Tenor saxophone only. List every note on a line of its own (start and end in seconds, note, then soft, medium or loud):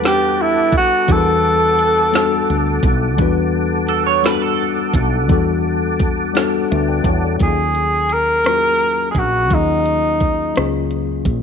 0.07 0.43 G4 loud
0.41 0.75 E4 medium
0.77 1.13 F#4 medium
1.12 2.86 A4 medium
7.43 8.15 G#4 medium
8.13 9.10 A#4 loud
9.11 9.20 G#4 medium
9.18 9.55 F#4 medium
9.54 10.92 D#4 medium